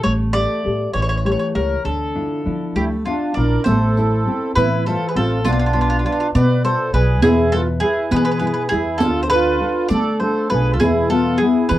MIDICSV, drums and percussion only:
0, 0, Header, 1, 2, 480
1, 0, Start_track
1, 0, Key_signature, -1, "minor"
1, 0, Tempo, 600601
1, 37, Time_signature, 6, 3, 24, 8
1, 2919, Key_signature, 0, "minor"
1, 3876, Tempo, 595238
1, 9469, End_track
2, 0, Start_track
2, 0, Title_t, "Riq"
2, 2924, Note_on_c, 9, 54, 58
2, 3004, Note_off_c, 9, 54, 0
2, 3173, Note_on_c, 9, 54, 17
2, 3253, Note_off_c, 9, 54, 0
2, 3655, Note_on_c, 9, 54, 44
2, 3735, Note_off_c, 9, 54, 0
2, 3888, Note_on_c, 9, 54, 19
2, 3969, Note_off_c, 9, 54, 0
2, 4364, Note_on_c, 9, 54, 62
2, 4444, Note_off_c, 9, 54, 0
2, 5085, Note_on_c, 9, 54, 50
2, 5166, Note_off_c, 9, 54, 0
2, 5326, Note_on_c, 9, 54, 21
2, 5406, Note_off_c, 9, 54, 0
2, 5562, Note_on_c, 9, 54, 22
2, 5643, Note_off_c, 9, 54, 0
2, 5791, Note_on_c, 9, 54, 73
2, 5872, Note_off_c, 9, 54, 0
2, 6037, Note_on_c, 9, 54, 20
2, 6118, Note_off_c, 9, 54, 0
2, 6507, Note_on_c, 9, 54, 53
2, 6588, Note_off_c, 9, 54, 0
2, 6744, Note_on_c, 9, 54, 19
2, 6825, Note_off_c, 9, 54, 0
2, 6989, Note_on_c, 9, 54, 20
2, 7069, Note_off_c, 9, 54, 0
2, 7224, Note_on_c, 9, 54, 69
2, 7305, Note_off_c, 9, 54, 0
2, 7467, Note_on_c, 9, 54, 18
2, 7548, Note_off_c, 9, 54, 0
2, 7952, Note_on_c, 9, 54, 51
2, 8033, Note_off_c, 9, 54, 0
2, 8198, Note_on_c, 9, 54, 16
2, 8279, Note_off_c, 9, 54, 0
2, 8678, Note_on_c, 9, 54, 54
2, 8759, Note_off_c, 9, 54, 0
2, 8911, Note_on_c, 9, 54, 18
2, 8992, Note_off_c, 9, 54, 0
2, 9395, Note_on_c, 9, 54, 46
2, 9469, Note_off_c, 9, 54, 0
2, 9469, End_track
0, 0, End_of_file